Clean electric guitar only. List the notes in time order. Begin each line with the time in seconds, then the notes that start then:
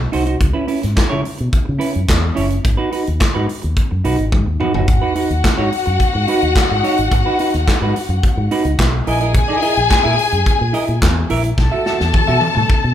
0.12 D#4 F#4 C5
0.26 D#4 F#4 C5
0.40 muted clean electric guitar stroke
0.53 C#4 E4 B4
0.68 C#4 E4 B4
0.82 muted clean electric guitar stroke
0.96 muted clean electric guitar stroke
1.09 C#4 E4 C#5
1.24 muted clean electric guitar stroke
1.38 muted clean electric guitar stroke
1.65 muted clean electric guitar stroke
1.79 C#4 E4 B4
1.93 muted clean electric guitar stroke
2.21 muted clean electric guitar stroke
2.35 C#4 E4 C#5
2.50 muted clean electric guitar stroke
2.64 muted clean electric guitar stroke
2.77 D#4 F#4 B4
2.92 D#4 F#4 B4
3.06 muted clean electric guitar stroke
3.19 muted clean electric guitar stroke
3.34 D#4 F#4 B4
3.48 muted clean electric guitar stroke
3.62 muted clean electric guitar stroke
3.91 muted clean electric guitar stroke
4.04 D#4 F#4 B4
4.19 muted clean electric guitar stroke
4.32 muted clean electric guitar stroke
4.46 muted clean electric guitar stroke
4.60 D#4 F#4 B4
4.74 D#4 F#4 B4
4.89 muted clean electric guitar stroke
5.02 D#4 F#4 B4
5.15 D#4 F#4 B4
5.31 muted clean electric guitar stroke
5.44 muted clean electric guitar stroke
5.58 D#4 F#4 C#5
5.72 muted clean electric guitar stroke
5.86 muted clean electric guitar stroke
6.13 muted clean electric guitar stroke
6.28 D#4 F#4 B4
6.42 muted clean electric guitar stroke
6.69 muted clean electric guitar stroke
6.83 D#4 F#4 C#5
6.98 muted clean electric guitar stroke
7.12 muted clean electric guitar stroke
7.26 D#4 F#4 B4
7.40 D#4 F#4 B4
7.54 muted clean electric guitar stroke
7.68 muted clean electric guitar stroke
7.82 D#4 F#4 B4
7.96 muted clean electric guitar stroke
8.10 muted clean electric guitar stroke
8.38 muted clean electric guitar stroke
8.51 D#4 F#4 B4
8.65 muted clean electric guitar stroke
8.79 muted clean electric guitar stroke
8.93 muted clean electric guitar stroke
9.07 E4 A#4 D#5
9.21 E4 A#4 D#5
9.35 muted clean electric guitar stroke
9.48 E4 A#4 D#5
9.62 E4 A#4 D#5
9.76 muted clean electric guitar stroke
9.91 muted clean electric guitar stroke
10.04 E4 A#4 E5
10.17 muted clean electric guitar stroke
10.32 muted clean electric guitar stroke
10.59 muted clean electric guitar stroke
10.73 E4 A#4 D#5
10.88 muted clean electric guitar stroke
11.16 muted clean electric guitar stroke
11.30 E4 A#4 E5
11.45 muted clean electric guitar stroke
11.58 muted clean electric guitar stroke
11.72 F#4 A4 E5
11.86 F#4 A4 E5
12.00 muted clean electric guitar stroke
12.14 muted clean electric guitar stroke
12.28 F#4 A4 E5
12.42 muted clean electric guitar stroke
12.55 muted clean electric guitar stroke
12.84 muted clean electric guitar stroke